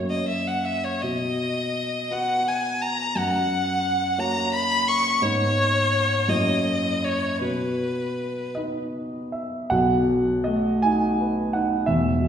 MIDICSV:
0, 0, Header, 1, 3, 480
1, 0, Start_track
1, 0, Key_signature, 5, "major"
1, 0, Tempo, 730816
1, 675, Time_signature, 6, 3, 24, 8
1, 1620, Tempo, 690449
1, 4020, Tempo, 757576
1, 6900, Tempo, 739827
1, 7380, Tempo, 677966
1, 8142, End_track
2, 0, Start_track
2, 0, Title_t, "Violin"
2, 0, Program_c, 0, 40
2, 67, Note_on_c, 0, 75, 43
2, 179, Note_off_c, 0, 75, 0
2, 182, Note_on_c, 0, 76, 49
2, 310, Note_on_c, 0, 78, 45
2, 320, Note_off_c, 0, 76, 0
2, 426, Note_on_c, 0, 76, 47
2, 436, Note_off_c, 0, 78, 0
2, 549, Note_on_c, 0, 73, 42
2, 559, Note_off_c, 0, 76, 0
2, 670, Note_on_c, 0, 75, 49
2, 680, Note_off_c, 0, 73, 0
2, 1388, Note_on_c, 0, 78, 55
2, 1398, Note_off_c, 0, 75, 0
2, 1629, Note_on_c, 0, 80, 53
2, 1639, Note_off_c, 0, 78, 0
2, 1862, Note_on_c, 0, 82, 59
2, 1872, Note_off_c, 0, 80, 0
2, 2110, Note_on_c, 0, 78, 59
2, 2121, Note_off_c, 0, 82, 0
2, 2821, Note_on_c, 0, 82, 60
2, 2831, Note_off_c, 0, 78, 0
2, 3052, Note_off_c, 0, 82, 0
2, 3056, Note_on_c, 0, 83, 71
2, 3298, Note_on_c, 0, 85, 68
2, 3308, Note_off_c, 0, 83, 0
2, 3540, Note_on_c, 0, 73, 76
2, 3550, Note_off_c, 0, 85, 0
2, 4254, Note_on_c, 0, 75, 57
2, 4264, Note_off_c, 0, 73, 0
2, 4733, Note_on_c, 0, 73, 54
2, 4743, Note_off_c, 0, 75, 0
2, 4968, Note_off_c, 0, 73, 0
2, 4971, Note_on_c, 0, 71, 46
2, 5687, Note_off_c, 0, 71, 0
2, 8142, End_track
3, 0, Start_track
3, 0, Title_t, "Grand piano"
3, 0, Program_c, 1, 0
3, 0, Note_on_c, 1, 42, 37
3, 0, Note_on_c, 1, 58, 25
3, 0, Note_on_c, 1, 66, 27
3, 0, Note_on_c, 1, 73, 26
3, 54, Control_c, 1, 64, 127
3, 649, Note_off_c, 1, 58, 0
3, 651, Note_off_c, 1, 66, 0
3, 654, Note_off_c, 1, 42, 0
3, 654, Note_off_c, 1, 73, 0
3, 679, Note_on_c, 1, 47, 38
3, 686, Control_c, 1, 64, 0
3, 795, Control_c, 1, 64, 127
3, 1367, Note_off_c, 1, 47, 0
3, 1384, Note_on_c, 1, 59, 29
3, 1386, Note_on_c, 1, 66, 31
3, 1388, Note_on_c, 1, 71, 32
3, 2071, Note_off_c, 1, 59, 0
3, 2072, Note_off_c, 1, 66, 0
3, 2073, Note_off_c, 1, 71, 0
3, 2099, Note_on_c, 1, 42, 38
3, 2113, Control_c, 1, 64, 0
3, 2205, Control_c, 1, 64, 127
3, 2792, Note_off_c, 1, 42, 0
3, 2813, Note_on_c, 1, 58, 36
3, 2814, Note_on_c, 1, 66, 34
3, 2815, Note_on_c, 1, 73, 38
3, 3506, Note_off_c, 1, 58, 0
3, 3507, Note_off_c, 1, 66, 0
3, 3508, Note_off_c, 1, 73, 0
3, 3531, Note_on_c, 1, 59, 34
3, 3532, Note_on_c, 1, 44, 48
3, 3535, Note_on_c, 1, 63, 35
3, 3539, Note_on_c, 1, 71, 35
3, 3547, Control_c, 1, 64, 0
3, 3638, Control_c, 1, 64, 127
3, 4225, Note_off_c, 1, 59, 0
3, 4227, Note_off_c, 1, 63, 0
3, 4229, Note_off_c, 1, 71, 0
3, 4231, Note_off_c, 1, 44, 0
3, 4251, Note_on_c, 1, 42, 48
3, 4251, Note_on_c, 1, 58, 33
3, 4253, Note_on_c, 1, 64, 33
3, 4258, Note_on_c, 1, 73, 35
3, 4266, Control_c, 1, 64, 0
3, 4380, Control_c, 1, 64, 127
3, 4947, Note_off_c, 1, 58, 0
3, 4948, Note_off_c, 1, 64, 0
3, 4951, Note_off_c, 1, 42, 0
3, 4951, Note_off_c, 1, 73, 0
3, 4966, Note_on_c, 1, 47, 37
3, 4983, Control_c, 1, 64, 0
3, 5116, Control_c, 1, 64, 127
3, 5677, Note_off_c, 1, 47, 0
3, 5686, Note_on_c, 1, 75, 52
3, 5699, Note_on_c, 1, 59, 26
3, 5700, Note_on_c, 1, 63, 26
3, 5705, Note_on_c, 1, 71, 30
3, 6177, Note_on_c, 1, 76, 48
3, 6187, Note_off_c, 1, 75, 0
3, 6405, Note_off_c, 1, 59, 0
3, 6405, Note_off_c, 1, 63, 0
3, 6407, Note_off_c, 1, 71, 0
3, 6415, Note_on_c, 1, 78, 74
3, 6421, Note_on_c, 1, 35, 48
3, 6422, Note_off_c, 1, 76, 0
3, 6429, Note_on_c, 1, 47, 45
3, 6442, Control_c, 1, 64, 0
3, 6537, Control_c, 1, 64, 127
3, 6656, Note_on_c, 1, 54, 36
3, 6885, Note_on_c, 1, 75, 67
3, 6893, Note_off_c, 1, 78, 0
3, 6897, Note_on_c, 1, 57, 37
3, 7048, Note_off_c, 1, 54, 0
3, 7134, Note_on_c, 1, 80, 83
3, 7139, Note_off_c, 1, 75, 0
3, 7147, Note_on_c, 1, 63, 43
3, 7287, Note_off_c, 1, 57, 0
3, 7383, Note_on_c, 1, 71, 43
3, 7527, Note_off_c, 1, 63, 0
3, 7613, Note_on_c, 1, 78, 59
3, 7616, Note_off_c, 1, 80, 0
3, 7627, Note_on_c, 1, 63, 43
3, 7768, Note_off_c, 1, 71, 0
3, 7829, Note_off_c, 1, 35, 0
3, 7833, Note_off_c, 1, 47, 0
3, 7847, Note_on_c, 1, 76, 73
3, 7854, Note_on_c, 1, 28, 47
3, 7858, Note_off_c, 1, 78, 0
3, 7859, Note_on_c, 1, 40, 50
3, 7865, Note_off_c, 1, 63, 0
3, 7876, Control_c, 1, 64, 0
3, 7981, Control_c, 1, 64, 127
3, 8095, Note_on_c, 1, 47, 38
3, 8142, Note_off_c, 1, 28, 0
3, 8142, Note_off_c, 1, 40, 0
3, 8142, Note_off_c, 1, 47, 0
3, 8142, Note_off_c, 1, 76, 0
3, 8142, End_track
0, 0, End_of_file